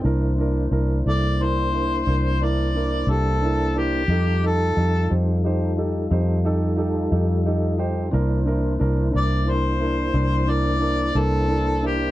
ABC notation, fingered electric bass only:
X:1
M:12/8
L:1/8
Q:3/8=59
K:Cmix
V:1 name="Fingered electric bass" clef=bass
C,,2 C,, C,,3 C,,3 C,,3 | F,,2 F,, F,,3 F,,3 F,,3 | C,,2 C,, C,,3 C,,3 C,,3 |]